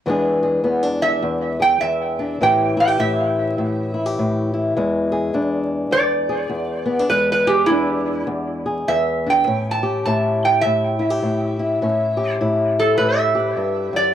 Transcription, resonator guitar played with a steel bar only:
1.02 1.58 E5 medium
1.62 1.82 G5 medium
1.81 2.38 E5 medium
2.43 2.77 G5 medium
2.80 3.00 G5 medium
3.00 4.13 E5 medium
5.92 7.07 D5 medium
7.10 7.29 B4 medium
7.32 7.50 B4 medium
7.47 7.68 G4 medium
7.66 8.25 E4 medium
8.88 9.26 E5 medium
9.30 9.67 G5 medium
9.71 10.04 A5 medium
10.05 10.44 A5 medium
10.45 10.64 G5 medium
10.61 12.36 E5 medium
12.79 12.99 A4 medium
12.98 13.17 B4 medium
13.17 13.94 E5 medium
13.96 14.14 D5 medium

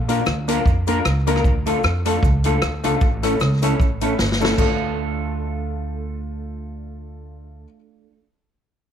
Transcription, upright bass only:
0.00 0.21 A#1 loud
0.27 0.60 D2 loud
0.66 0.99 F2 medium
1.05 1.39 C#2 medium
1.45 1.78 D2 medium
1.84 2.17 F2 loud
2.23 2.56 C#2 medium
2.62 2.81 D2 medium
2.85 2.99 C#2 medium
3.02 3.35 A1 loud
3.41 3.74 C#2 medium
3.80 4.13 A1 medium
4.19 4.52 G1 medium
4.58 7.64 D2 loud

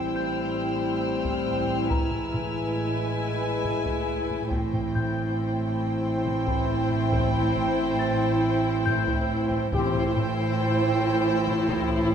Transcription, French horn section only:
0.00 1.87 G3 medium
0.00 1.86 C4 medium
1.91 4.48 G#3 medium
1.91 4.48 E4 medium
4.51 9.57 C4 medium
4.51 9.57 E4 medium
9.74 10.06 C4 medium
9.74 10.06 G4 medium

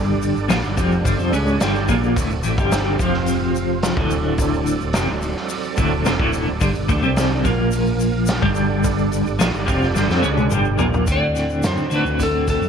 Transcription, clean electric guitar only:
0.00 0.34 G2 medium
0.00 0.35 D3 loud
0.00 0.34 G3 loud
0.36 0.48 G2 medium
0.36 0.49 D3 medium
0.48 0.62 A#2 medium
0.48 0.62 F3 loud
0.62 0.76 G2 medium
0.62 0.77 D3 medium
0.77 1.04 F2 medium
0.77 1.04 C3 loud
0.77 1.04 F3 medium
1.04 1.18 G2 medium
1.04 1.17 D3 medium
1.18 1.31 F3 medium
1.18 1.32 C4 medium
1.32 1.59 C#3 medium
1.32 1.60 G#3 medium
1.32 1.60 C#4 medium
1.60 1.87 G2 medium
1.60 1.88 D3 medium
1.60 1.88 G3 medium
1.88 2.15 A#2 medium
1.88 2.15 F3 medium
1.88 2.16 A#3 medium
2.17 2.29 D2 medium
2.17 2.29 A2 medium
2.30 2.43 D2 medium
2.30 2.42 A2 medium
2.43 2.57 A2 medium
2.43 2.57 E3 medium
2.57 2.99 G2 medium
2.57 2.99 D3 medium
2.57 2.99 G3 medium
2.99 3.96 F2 medium
2.99 3.97 C3 medium
2.99 3.97 F3 medium
3.97 4.79 D2 medium
3.97 4.79 A2 loud
3.97 4.80 D3 loud
4.80 4.94 D2 medium
4.80 4.94 A2 medium
4.94 5.08 F2 medium
4.94 5.08 C3 medium
5.08 5.31 D2 medium
5.08 5.31 A2 medium
5.77 6.05 D2 medium
5.77 6.05 A2 medium
5.77 6.05 D3 medium
6.05 6.18 F2 medium
6.05 6.18 C3 loud
6.18 6.45 D2 medium
6.18 6.46 A2 loud
6.18 6.47 D3 loud
6.46 6.59 D2 medium
6.46 6.60 A2 medium
6.60 6.73 G2 medium
6.60 6.73 D3 loud
6.74 6.89 G2 medium
6.74 6.87 D3 medium
6.89 7.02 D3 medium
6.89 7.03 A3 loud
7.02 7.43 C3 medium
7.02 7.44 G3 loud
7.02 7.44 C4 medium
7.44 8.41 A#2 medium
7.44 8.42 F3 medium
7.44 8.42 A#3 medium
8.42 9.23 G2 medium
8.42 9.24 D3 medium
8.42 9.26 G3 loud
9.25 9.38 G2 medium
9.25 9.39 D3 medium
9.39 9.52 A#2 medium
9.39 9.53 F3 loud
9.53 9.65 G2 medium
9.53 9.66 D3 medium
9.66 9.93 F2 medium
9.66 9.94 C3 medium
9.66 9.95 F3 loud
9.94 10.08 G2 medium
9.94 10.07 D3 medium
10.07 10.21 F3 medium
10.07 10.22 C4 medium
10.21 10.50 C#3 medium
10.21 10.50 G#3 medium
10.21 10.51 C#4 medium
10.50 10.77 G2 medium
10.50 10.78 D3 medium
10.50 10.78 G3 loud
10.78 11.05 A#2 medium
10.78 11.06 F3 medium
10.78 11.06 A#3 loud
11.05 11.92 D2 medium
11.05 11.89 A2 medium
11.05 11.91 D3 medium
11.05 11.90 A3 medium
11.05 11.90 C4 medium
11.05 11.89 F#4 medium
11.90 12.69 D2 medium
11.90 12.69 A2 medium
11.90 12.69 D3 medium
11.90 12.69 A3 medium
11.90 12.69 C4 medium
11.90 12.69 F#4 medium

